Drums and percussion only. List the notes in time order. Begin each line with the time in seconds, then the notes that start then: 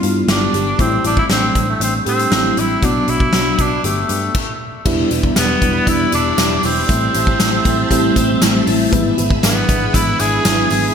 0.03 closed hi-hat
0.28 snare, closed hi-hat
0.54 closed hi-hat
0.79 kick, closed hi-hat
1.04 closed hi-hat
1.17 kick
1.30 snare, closed hi-hat
1.55 kick, closed hi-hat
1.81 closed hi-hat
2.06 closed hi-hat
2.19 closed hi-hat
2.31 snare, closed hi-hat
2.57 closed hi-hat
2.82 kick, closed hi-hat
3.08 closed hi-hat
3.20 kick
3.33 snare, closed hi-hat
3.58 kick, closed hi-hat
3.84 closed hi-hat
4.09 closed hi-hat
4.35 kick, crash
4.85 kick, crash, tambourine
5.11 closed hi-hat, tambourine
5.23 kick
5.36 snare, closed hi-hat, tambourine
5.62 kick, closed hi-hat
5.87 kick, closed hi-hat, tambourine
6.12 closed hi-hat, tambourine
6.38 snare, closed hi-hat, tambourine
6.63 open hi-hat, tambourine
6.89 kick, closed hi-hat, tambourine
7.14 closed hi-hat, tambourine
7.27 kick
7.40 snare, closed hi-hat, tambourine
7.65 kick, closed hi-hat, tambourine
7.91 kick, closed hi-hat, tambourine
8.16 kick, closed hi-hat, tambourine
8.41 snare, closed hi-hat, tambourine
8.67 open hi-hat, tambourine
8.93 kick, closed hi-hat, tambourine
9.18 closed hi-hat, tambourine
9.30 kick
9.43 snare, closed hi-hat, tambourine
9.69 kick, closed hi-hat, tambourine
9.94 kick, closed hi-hat, tambourine
10.19 closed hi-hat, tambourine
10.45 snare, closed hi-hat, tambourine
10.70 open hi-hat, tambourine